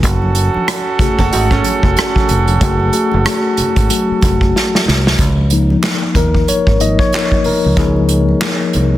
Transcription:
0.03 0.48 F#1 loud
0.03 4.83 C#4 medium
0.03 4.83 F#4 medium
0.03 4.83 A4 medium
0.03 kick loud
0.03 closed hi-hat medium
0.03 muted conga soft
0.03 low conga medium
0.22 high conga soft
0.35 closed hi-hat medium
0.35 muted conga soft
0.54 muted fingered electric bass stroke soft
0.54 high conga medium
0.68 cross-stick loud
0.68 closed hi-hat medium
0.68 muted conga soft
0.99 1.45 A3 medium
0.99 1.45 F#4 medium
0.99 1.45 G#4 medium
0.99 muted fingered electric bass stroke soft
0.99 kick loud
0.99 closed hi-hat medium
0.99 low conga medium
1.18 1.31 F#1 medium
1.18 1.31 F#4 medium
1.18 1.32 A4 medium
1.18 kick medium
1.18 closed hi-hat soft
1.33 1.61 G#1 medium
1.33 1.50 D#4 medium
1.33 1.50 F#4 medium
1.33 closed hi-hat medium
1.51 2.44 A3 medium
1.51 2.44 C#4 medium
1.51 kick medium
1.64 closed hi-hat medium
1.64 high conga medium
1.83 1.95 F1 medium
1.83 kick medium
1.97 cross-stick loud
1.97 closed hi-hat medium
2.16 kick medium
2.16 high conga medium
2.28 2.58 F1 medium
2.28 closed hi-hat medium
2.28 low conga medium
2.47 closed hi-hat medium
2.47 high conga medium
2.61 2.89 F#1 medium
2.61 2.90 A3 soft
2.61 2.90 F#4 medium
2.61 2.90 G#4 soft
2.61 kick loud
2.61 closed hi-hat medium
2.61 low conga medium
2.80 high conga soft
2.92 3.89 A3 soft
2.92 3.90 F#4 medium
2.92 5.15 G#4 medium
2.92 closed hi-hat medium
2.92 muted conga soft
3.12 3.25 F#1 medium
3.12 high conga medium
3.25 cross-stick loud
3.25 closed hi-hat medium
3.25 muted conga soft
3.57 muted fingered electric bass stroke soft
3.57 closed hi-hat medium
3.57 muted conga soft
3.57 low conga medium
3.76 3.88 G#1 medium
3.76 kick medium
3.76 closed hi-hat soft
3.89 4.19 F#3 soft
3.89 4.19 A3 soft
3.89 4.19 F#4 medium
3.89 closed hi-hat loud
3.89 muted conga soft
4.11 muted fingered electric bass stroke soft
4.21 4.51 F1 medium
4.21 kick medium
4.21 closed hi-hat medium
4.21 muted conga soft
4.21 high conga medium
4.41 kick loud
4.56 snare soft
4.73 snare medium
4.73 high conga medium
4.86 5.16 C2 medium
4.86 snare medium
4.86 muted conga soft
4.86 low conga medium
5.06 snare medium
5.06 high conga medium
5.18 5.75 C#2 loud
5.18 kick loud
5.18 closed hi-hat medium
5.18 low conga medium
5.38 high conga soft
5.50 6.44 F3 soft
5.50 6.44 A#3 soft
5.50 6.45 D#4 medium
5.50 closed hi-hat medium
5.70 high conga medium
5.83 snare loud
5.83 clap medium
5.83 closed hi-hat medium
6.15 6.44 D#2 medium
6.15 6.49 A#4 medium
6.15 kick medium
6.15 closed hi-hat medium
6.15 muted conga soft
6.15 low conga medium
6.34 kick medium
6.48 6.81 C#5 medium
6.48 muted fingered electric bass stroke soft
6.48 closed hi-hat medium
6.48 muted conga soft
6.67 6.95 G#1 medium
6.67 kick medium
6.80 7.09 F3 soft
6.80 7.09 A#3 soft
6.80 7.10 D#4 medium
6.80 6.98 D#5 loud
6.80 closed hi-hat medium
6.80 muted conga soft
6.80 high conga medium
6.99 7.46 C#5 loud
6.99 kick loud
7.13 snare loud
7.13 clap medium
7.13 closed hi-hat medium
7.13 muted conga soft
7.32 kick medium
7.32 high conga medium
7.44 7.78 A#4 medium
7.44 muted fingered electric bass stroke soft
7.44 open hi-hat soft
7.44 muted conga soft
7.44 low conga medium
7.64 7.76 C#2 medium
7.64 high conga medium
7.77 8.98 F3 medium
7.77 8.98 A#3 soft
7.77 8.98 D#4 medium
7.77 8.98 G#4 medium
7.77 kick loud
7.77 closed hi-hat medium
7.77 muted conga soft
7.77 low conga medium
7.96 high conga soft
8.09 closed hi-hat medium
8.09 muted conga soft
8.29 high conga medium
8.42 snare loud
8.42 clap loud
8.42 closed hi-hat medium
8.73 8.98 C2 medium
8.73 closed hi-hat medium
8.73 muted conga soft
8.73 low conga medium

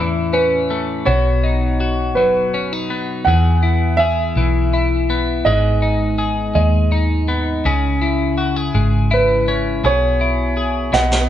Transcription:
0.00 1.03 E2 medium
0.00 1.06 A2 medium
0.00 1.14 E3 medium
0.00 0.32 C#4 soft
0.00 1.06 E4 medium
0.33 1.14 C#4 soft
0.33 1.02 B4 medium
0.70 1.14 A3 soft
1.06 2.17 B1 medium
1.06 3.26 B2 medium
1.06 1.79 F#4 medium
1.06 2.19 C#5 medium
1.44 2.53 D#4 soft
1.80 3.26 F#4 soft
2.15 3.22 F#1 medium
2.15 3.34 F#3 soft
2.15 2.94 B4 medium
2.54 2.73 C#4 soft
2.73 3.34 D#4 soft
2.90 5.09 B3 soft
3.25 4.32 E2 medium
3.25 5.46 E2 medium
3.25 3.99 G#4 medium
3.25 4.01 F#5 medium
3.63 4.72 E4 soft
3.97 5.46 G#4 soft
3.97 5.49 E5 medium
4.36 5.42 B1 medium
4.36 5.53 E3 soft
4.73 5.53 E4 soft
5.10 7.28 B3 soft
5.45 6.51 G#1 medium
5.45 7.65 G#2 medium
5.45 6.18 G#4 medium
5.45 6.53 D#5 medium
5.82 6.91 D#4 soft
6.18 7.66 G#4 soft
6.55 7.61 D#2 medium
6.55 8.41 G#3 medium
6.55 7.33 D#5 medium
6.92 7.72 D#4 medium
7.28 7.72 B3 soft
7.65 8.70 C#2 medium
7.65 9.84 C#3 medium
7.65 8.37 G#4 medium
8.02 9.10 E4 soft
8.38 8.57 F#4 medium
8.57 9.83 G#4 soft
8.74 9.80 G#1 medium
8.74 9.91 G#3 soft
9.11 9.91 E4 soft
9.11 9.87 B4 medium
9.48 9.91 C#4 soft
9.84 10.89 B1 medium
9.84 10.92 B2 medium
9.84 10.56 G#4 medium
9.84 10.97 C#5 medium
10.21 11.01 E4 soft
10.57 11.01 G#4 soft
10.93 11.29 B1 medium
10.93 11.29 B2 medium
10.93 11.29 D#5 medium
10.93 11.29 F#5 medium
10.93 snare soft
11.11 snare soft

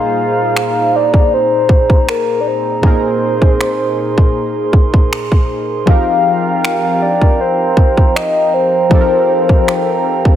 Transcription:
0.00 2.78 A#2 medium
0.00 2.79 A#3 medium
0.00 2.80 D#4 medium
0.00 5.83 D#4 medium
0.00 2.80 G#4 medium
0.00 5.83 G#4 medium
0.00 2.81 C5 medium
0.00 5.83 C5 medium
0.00 0.97 F5 loud
0.00 2.80 A#5 medium
0.56 finger snap loud
0.96 1.33 D5 loud
1.14 kick medium
1.34 2.11 C5 loud
1.69 kick loud
1.90 kick medium
2.09 2.42 A#4 medium
2.09 finger snap loud
2.40 2.49 D5 medium
2.47 4.74 C5 medium
2.81 5.82 A#2 medium
2.81 5.83 A#3 medium
2.81 5.83 D#4 medium
2.81 5.84 G#4 medium
2.81 5.84 C6 medium
2.81 kick loud
2.87 5.85 A#4 medium
3.42 kick medium
3.61 finger snap loud
4.18 kick medium
4.73 kick loud
4.94 kick medium
5.13 finger snap loud
5.32 kick medium
5.86 8.86 F3 medium
5.86 8.87 C4 medium
5.86 8.87 D#4 medium
5.86 8.88 G4 medium
5.86 10.36 A#4 medium
5.86 10.36 F5 medium
5.86 7.04 F5 loud
5.86 10.36 G5 medium
5.86 10.36 A#5 medium
5.86 kick loud
5.91 8.89 A#4 medium
6.65 finger snap loud
7.02 7.40 D5 loud
7.21 kick medium
7.40 8.17 C5 medium
7.77 kick loud
7.97 kick medium
8.16 8.55 D#5 loud
8.16 finger snap loud
8.54 10.36 C5 medium
8.89 10.36 F3 medium
8.89 10.36 C4 medium
8.89 10.36 D#4 medium
8.89 10.36 G4 medium
8.89 kick loud
8.94 9.00 A4 medium
9.01 10.36 A#4 medium
9.49 kick medium
9.68 finger snap loud
10.25 kick medium

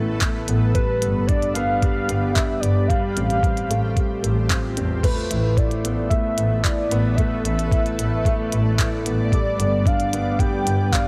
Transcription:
0.00 0.16 A1 medium
0.00 0.71 A3 medium
0.00 0.77 A3 loud
0.00 0.49 B3 loud
0.00 0.77 E4 medium
0.00 0.71 A4 medium
0.00 2.85 B4 medium
0.21 kick loud
0.21 clap medium
0.21 closed hi-hat soft
0.48 0.69 A1 loud
0.48 0.74 B3 medium
0.48 closed hi-hat medium
0.74 2.87 G3 medium
0.74 0.90 G3 medium
0.74 4.99 G4 medium
0.74 1.29 B4 loud
0.74 2.87 D5 medium
0.74 kick loud
0.74 closed hi-hat soft
1.01 1.23 G1 loud
1.01 1.27 B3 medium
1.01 closed hi-hat medium
1.27 1.54 D4 medium
1.27 1.54 D5 loud
1.27 kick loud
1.27 closed hi-hat soft
1.42 closed hi-hat soft
1.54 1.76 G1 medium
1.54 1.71 B3 loud
1.54 2.35 F5 loud
1.54 closed hi-hat medium
1.82 2.08 G3 loud
1.82 kick medium
1.82 closed hi-hat soft
2.09 2.30 G1 medium
2.09 2.35 B3 medium
2.09 closed hi-hat medium
2.34 2.62 D4 medium
2.34 2.62 E5 loud
2.34 kick loud
2.34 clap medium
2.34 closed hi-hat soft
2.60 2.83 G1 loud
2.60 2.88 B3 medium
2.60 2.89 D5 medium
2.60 closed hi-hat medium
2.88 3.15 G3 loud
2.88 9.28 A3 medium
2.88 5.02 F4 medium
2.88 5.02 C5 medium
2.88 4.49 F5 loud
2.88 kick loud
2.88 closed hi-hat soft
3.16 3.37 A1 medium
3.16 3.42 C4 medium
3.16 closed hi-hat medium
3.30 closed hi-hat soft
3.43 3.69 C4 medium
3.43 kick loud
3.43 closed hi-hat soft
3.57 closed hi-hat soft
3.69 3.90 A1 medium
3.69 3.95 A3 medium
3.69 closed hi-hat medium
3.96 4.12 G3 medium
3.96 kick medium
3.96 closed hi-hat soft
4.23 4.44 A1 medium
4.23 4.48 A4 medium
4.23 closed hi-hat medium
4.50 4.65 C4 medium
4.50 kick loud
4.50 clap medium
4.50 closed hi-hat soft
4.77 4.98 E2 medium
4.77 5.03 C4 medium
4.77 closed hi-hat medium
5.03 5.29 A3 loud
5.03 9.28 A4 medium
5.03 9.28 B4 medium
5.03 5.59 B4 loud
5.03 7.15 E5 medium
5.03 kick loud
5.03 closed hi-hat soft
5.03 crash medium
5.30 5.51 A1 loud
5.30 5.56 E4 medium
5.30 closed hi-hat medium
5.57 5.83 E4 medium
5.57 6.09 D5 medium
5.57 kick loud
5.57 closed hi-hat soft
5.71 closed hi-hat soft
5.84 6.05 A1 medium
5.84 6.10 B3 medium
5.84 closed hi-hat medium
6.10 6.26 A3 medium
6.10 6.65 E5 loud
6.10 kick medium
6.10 closed hi-hat soft
6.37 6.58 A1 medium
6.37 6.63 B3 medium
6.37 closed hi-hat medium
6.63 6.90 E4 medium
6.63 7.18 D5 loud
6.63 kick loud
6.63 clap medium
6.63 closed hi-hat soft
6.90 7.12 A1 loud
6.90 7.07 B3 loud
6.90 closed hi-hat medium
7.16 7.44 A3 loud
7.16 11.08 D5 medium
7.16 7.42 E5 loud
7.16 kick loud
7.16 closed hi-hat soft
7.43 7.65 A1 loud
7.43 7.71 B3 medium
7.43 9.00 E5 loud
7.43 closed hi-hat medium
7.59 closed hi-hat soft
7.72 7.98 E4 medium
7.72 kick loud
7.72 closed hi-hat soft
7.86 closed hi-hat soft
7.99 8.19 A1 medium
7.99 8.24 B3 medium
7.99 closed hi-hat medium
8.25 8.51 A3 loud
8.25 kick loud
8.25 closed hi-hat soft
8.52 8.73 A1 medium
8.52 8.78 E4 medium
8.52 closed hi-hat medium
8.79 9.04 E4 medium
8.79 kick loud
8.79 clap medium
8.79 closed hi-hat soft
9.05 9.26 A1 loud
9.05 9.31 B3 medium
9.05 closed hi-hat medium
9.32 11.08 G3 medium
9.32 9.48 G3 medium
9.32 11.08 G4 medium
9.32 11.08 B4 medium
9.32 9.88 D5 loud
9.32 kick loud
9.32 closed hi-hat soft
9.58 9.80 G1 loud
9.58 9.85 B3 medium
9.58 closed hi-hat medium
9.86 10.11 D4 medium
9.86 10.40 F5 medium
9.86 kick loud
9.86 closed hi-hat soft
10.00 closed hi-hat soft
10.12 10.33 G1 medium
10.12 10.28 B3 loud
10.12 closed hi-hat medium
10.39 10.65 G3 loud
10.39 10.93 G5 loud
10.39 kick loud
10.39 closed hi-hat soft
10.65 10.87 G1 loud
10.65 10.92 B3 medium
10.65 closed hi-hat medium
10.92 11.08 D4 medium
10.92 11.08 F5 loud
10.92 kick loud
10.92 clap medium
10.92 closed hi-hat soft

